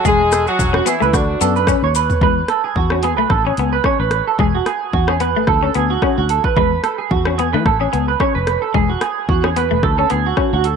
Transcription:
0.05 E1 G#3 G#4, kick, maracas
0.20 G#4
0.32 A4, cross-stick, closed hi-hat, maracas
0.47 F#3 F#4 G#4, maracas
0.59 E1, kick, maracas
0.73 C#4 F#4, cross-stick
0.86 E3 B3 E4 G#4, closed hi-hat, maracas
1.00 C#2 A3 B4, maracas
1.13 D2 D3 D4 F#4, kick, cross-stick, maracas
1.41 F#2 B3 A4, closed hi-hat, maracas
1.56 B4, maracas
1.67 C#4, kick, cross-stick, maracas
1.82 D#2 C#5
1.95 B4, closed hi-hat, maracas
2.10 floor tom, maracas
2.21 E2 G#3 B4, kick
2.48 A4, cross-stick, closed hi-hat
2.64 G#4
2.76 E2 F#4, kick
2.90 C#4, cross-stick
3.03 B3 G#4, closed hi-hat
3.17 B1 A3 B4
3.30 A1 A4, kick, cross-stick
3.45 C#4 G#4
3.57 C#2 B3, closed hi-hat
3.73 B4
3.84 C#4 C#5, kick, cross-stick
4.00 A1 B4
4.11 cross-stick, closed hi-hat
4.27 A4
4.39 E1 G#3 G#4, kick
4.55 F#4
4.66 G#4, cross-stick, closed hi-hat
4.93 E2 F#4, kick
5.08 C#4 G#4, cross-stick
5.20 B3 B4, closed hi-hat
5.35 A1 A3
5.47 D2 A4, kick, cross-stick
5.63 C#4 A4
5.74 D2 B3 G#4, closed hi-hat
5.90 F#4
6.02 C#4, kick, cross-stick
6.18 D2 F#4
6.29 A4, closed hi-hat
6.44 B4, kick
6.57 E2 G#3 B4, kick
6.84 A4, cross-stick, closed hi-hat
6.98 G#4
7.11 E2 F#4, kick
7.25 C#4, cross-stick
7.38 B3 G#4, closed hi-hat
7.53 E3 A3 B4
7.65 A1 A4, kick, cross-stick
7.80 C#4 G#4
7.93 C#2 B3, closed hi-hat
8.08 B4
8.20 C#4 C#5, kick, cross-stick
8.35 F1 B4
8.47 cross-stick, closed hi-hat
8.62 A4
8.74 E1 G#3 G#4, kick
8.90 F#4
9.01 G#4, cross-stick, closed hi-hat
9.29 E2 F#4, kick
9.44 C#4 G#4, cross-stick
9.56 B3 B4, closed hi-hat
9.71 E1 A3
9.83 D2 A4, kick, cross-stick
9.98 C#4 A4
10.10 D2 B3 G#4, closed hi-hat
10.26 F#4
10.37 C#4, kick, cross-stick
10.53 D2 F#4
10.64 A4, closed hi-hat

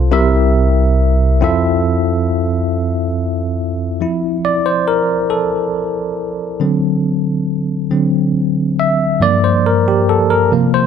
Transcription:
Already playing: C2 C3 F4 A4 C5
0.11 C2 C3 C4 E4 G4 A#4 E5
1.41 F2 C4 E4 F4 A4 E5
4.01 F3 C4 E4
4.45 D5
4.66 C5
4.88 A#4
5.30 A4
6.60 D3 F#3 C4
7.91 D3 F#3 C4
8.80 E5
9.20 G2 F3 A#3 D5
9.44 C5
9.66 A#4
9.88 G4
10.09 A4
10.30 A#4
10.52 C3 F3 A#3
10.74 C5

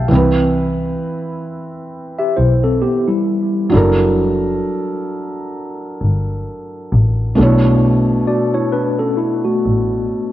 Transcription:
Already playing: E5 F5 G5 A5
0.08 C2 E3 C4
0.13 E4 B4
2.19 G4 E5
2.37 B1 E4 C5
2.64 C4 A4
2.82 B3 G4
3.08 G3 E4
3.70 F#3 D4 E4
3.74 F#1 A4 A#4
6.01 G1
6.92 A1
7.35 B1 B2 A3 D4
7.41 E4 C#5
8.27 F#4 D5
8.54 E4 C#5
8.72 D4 B4
8.99 C#4 A4
9.17 E4
9.45 A3 F#4
9.66 A1

